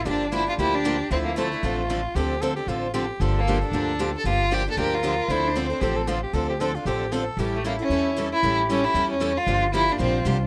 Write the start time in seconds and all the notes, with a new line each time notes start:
0.05 G1 D3 F3 A#3 D4 G4
0.32 D3 F3 A#3 D4 E4 G4
0.47 A#3 D4 F4 G4
0.58 D2 D3 F3 A#3 D4 E4 G4
0.75 D4
0.85 D3 F3 A#3 D4 G4
1.11 D2 D3 F3 C4 D4 E4 A4
1.25 A#3
1.36 D3 F3 A3 C4 D4 A4
1.52 C4 D4 A4
1.63 A1 D3 F3 C4 D4 F4 A4
1.89 D3 F3 C4 D4 A4
2.15 D2 D3 F3 C4 D4 G4 A4
2.41 D3 F3 C4 D4 A4
2.56 C4 D4 G4 A4
2.67 A1 D3 F3 C4 D4 F4 A4
2.94 D3 F3 C4 D4 G4 A4
3.20 G1 D3 F3 A#3 D4 G4 A4
3.39 A#3
3.48 D3 F3 A#3 D4 G4
3.61 A#3 D4 G4
3.72 D2 D3 F3 A#3 D4 G4
3.99 D3 F3 A#3 D4 G4
4.18 A4
4.24 G1 D3 F3 A#3 D4 G4
4.28 F4
4.52 D3 F3 A#3 D4 G4
4.66 A#3 D4 G4
4.71 A4
4.77 D2 D3 F3 A#3 D4 G4 A#4
4.95 F4
5.03 D3 F3 A#3 D4 G4
5.28 D2 D3 F3 C4 D4 E4 A4 C5
5.47 D4
5.55 D3 F3 C4 D4 A4
5.70 C4 D4 A4
5.81 A1 D3 F3 C4 D4 G4 A4
5.96 A4
6.07 D3 F3 C4 D4 F4 A4
6.23 G4
6.33 D2 D3 F3 C4 D4 A4
6.49 G4
6.60 D3 F3 C4 D4 A4
6.75 C4 D4 F4 A4
6.85 A1 D3 F3 C4 D4 G4 A4
7.12 D3 F3 C4 D4 A4
7.37 A1 E3 G3 C#4 E4 G4 A4
7.56 A3
7.65 E3 G3 A#3 C#4 E4 A4
7.79 C#4 E4 A4
7.89 E2 E3 G3 C#4 E4 A4
8.16 E3 G3 C#4 E4 A4
8.33 E4
8.43 A1 E3 G3 C#4 E4 G4 A4
8.70 E3 G3 C#4 E4 A4
8.84 C#4 E4 A4
8.94 E2 E3 G3 C#4 E4 A4
9.11 C#4
9.21 E3 G3 C#4 E4 A4
9.37 F4
9.47 G1 D3 F3 A#3 D4 F4 G4
9.73 D3 F3 A#3 D4 E4 G4
9.88 A#3 D4 G4
9.99 A#1 D3 F3 A#3 C4 D4 G4
10.25 C2 D3 F3 A#3 D4 G4
10.41 D4